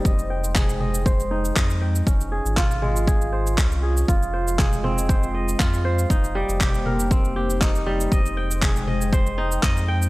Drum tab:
SH |xx-xxx-xxx-xxx-x|xx-xxx-xxx-xxx-x|xx-xxx-xxx-xxx-x|xx-xxx-xxx-xxx-x|
CP |----x-------x---|----x-------x---|----x-------x---|----x-------x---|
T2 |----o-o---------|----o-o---------|----o-o---------|----o-o---------|
BD |o---o---o---o---|o---o---o---o---|o---o---o---o---|o---o---o---o---|

SH |xx-xxx-xxx-xxx-x|
CP |----x-------x---|
T2 |----o-o---------|
BD |o---o---o---o---|